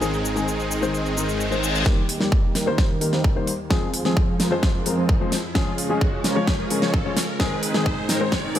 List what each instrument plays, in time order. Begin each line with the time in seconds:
Already playing: analog synth pad G#4
0.01 detuned saw bass G#1, grand piano D#3 G#3 C4 G#4, supersaw synth D#3 G#3 C4 D#4 G#4, analog synth pad C5 D#5 C6, shaker
0.14 shaker
0.25 shaker
0.35 grand piano D#3 G#3 C4 G#4, shaker
0.48 shaker
0.60 shaker
0.71 shaker
0.81 grand piano D#3 G#3 C4 C5, shaker
0.94 reverse cymbal, shaker
1.06 shaker
1.16 grand piano D#3 G#3 C4 A#4, shaker
1.29 shaker
1.40 shaker
1.51 grand piano D#3 G#3 C4 C5, shaker
1.64 shaker
1.75 shaker
1.85 analog synth pad D#2 D#3 G4 A#4, grand piano D#3 G3 A#3 G4, supersaw synth D#3 G3 A#3 D#4 G4, kick, snare, riser
2.09 open hi-hat
2.20 grand piano D#3 G3 A#3 G4, supersaw synth D#3 G3 A#3 D#4 G4, snare
2.32 kick
2.55 supersaw synth D#3 G3 A#3 D#4 A#4, snare, open hi-hat
2.66 grand piano D#3 G3 A#3 C5
2.78 kick, snare
2.90 supersaw synth D#3 G3 A#3 D#4 A#4
3.01 grand piano D#3 G3 A#3 A#4, open hi-hat
3.13 supersaw synth D#3 G3 A#3 D#4 C5, snare
3.24 kick
3.35 grand piano D#3 G3 A#3 C5, supersaw synth D#3 G3 A#3 D#4 C5
3.47 open hi-hat
3.70 analog synth pad F2 F3 G#4 C5, grand piano F3 G#3 C4 G#4, supersaw synth F3 G#3 C4 F4 G#4, kick, snare
3.94 open hi-hat
4.05 grand piano F3 G#3 C4 G#4, supersaw synth F3 G#3 C4 F4 G#4, snare
4.17 kick
4.40 supersaw synth F3 G#3 C4 F4 A#4, snare, open hi-hat
4.51 grand piano F3 G#3 C4 C5
4.63 kick, snare
4.74 supersaw synth F3 G#3 C4 F4 A#4
4.85 grand piano F3 G#3 C4 A#4, open hi-hat
4.97 supersaw synth F3 G#3 C4 F4 C5
5.09 kick
5.20 grand piano F3 G#3 C4 C5, supersaw synth F3 G#3 C4 F4 C5
5.32 snare, open hi-hat
5.54 analog synth pad C#3 G#3 F4 C#5, grand piano F3 G#3 C#4 G#4, supersaw synth F3 G#3 C#4 F4 G#4, kick, snare
5.78 open hi-hat
5.89 grand piano F3 G#3 C#4 G#4, supersaw synth F3 G#3 C#4 F4 G#4
6.01 kick
6.24 supersaw synth F3 G#3 C#4 F4 A#4, snare, open hi-hat
6.35 grand piano F3 G#3 C#4 C#5
6.47 kick, snare
6.59 supersaw synth F3 G#3 C#4 F4 A#4
6.70 grand piano F3 G#3 C#4 A#4, open hi-hat
6.82 supersaw synth F3 G#3 C#4 F4 C#5, snare
6.94 kick
7.05 grand piano F3 G#3 C#4 C#5, supersaw synth F3 G#3 C#4 F4 C#5
7.17 snare, open hi-hat
7.39 analog synth pad G#2 D#4 C5, grand piano D#3 G#3 C4 G#4, supersaw synth D#3 G#3 C4 D#4 G#4, kick, snare
7.63 open hi-hat
7.74 grand piano D#3 G#3 C4 G#4, supersaw synth D#3 G#3 C4 D#4 G#4, snare
7.86 kick
8.09 supersaw synth D#3 G#3 C4 D#4 A#4, snare, open hi-hat
8.20 grand piano D#3 G#3 C4 C5
8.32 kick, snare
8.44 supersaw synth D#3 G#3 C4 D#4 A#4
8.55 grand piano D#3 G#3 C4 G#4, open hi-hat